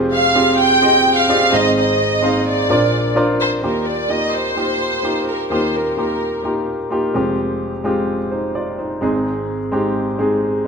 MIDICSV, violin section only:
0, 0, Header, 1, 2, 480
1, 0, Start_track
1, 0, Key_signature, -3, "major"
1, 0, Tempo, 468384
1, 1802, Time_signature, 4, 2, 24, 8
1, 10938, End_track
2, 0, Start_track
2, 0, Title_t, "Violin section"
2, 0, Program_c, 0, 48
2, 137, Note_on_c, 0, 77, 96
2, 577, Note_off_c, 0, 77, 0
2, 616, Note_on_c, 0, 79, 115
2, 1209, Note_off_c, 0, 79, 0
2, 1209, Note_on_c, 0, 77, 104
2, 1565, Note_off_c, 0, 77, 0
2, 1580, Note_on_c, 0, 75, 99
2, 1802, Note_off_c, 0, 75, 0
2, 1814, Note_on_c, 0, 75, 81
2, 2486, Note_off_c, 0, 75, 0
2, 2540, Note_on_c, 0, 74, 81
2, 3249, Note_off_c, 0, 74, 0
2, 3489, Note_on_c, 0, 72, 87
2, 3594, Note_off_c, 0, 72, 0
2, 3734, Note_on_c, 0, 70, 63
2, 3950, Note_off_c, 0, 70, 0
2, 3961, Note_on_c, 0, 74, 68
2, 4200, Note_off_c, 0, 74, 0
2, 4202, Note_on_c, 0, 75, 74
2, 4441, Note_off_c, 0, 75, 0
2, 4444, Note_on_c, 0, 72, 81
2, 5403, Note_off_c, 0, 72, 0
2, 5408, Note_on_c, 0, 70, 63
2, 5628, Note_off_c, 0, 70, 0
2, 5650, Note_on_c, 0, 72, 60
2, 5869, Note_off_c, 0, 72, 0
2, 5890, Note_on_c, 0, 70, 58
2, 6110, Note_off_c, 0, 70, 0
2, 6122, Note_on_c, 0, 70, 57
2, 6568, Note_off_c, 0, 70, 0
2, 10938, End_track
0, 0, End_of_file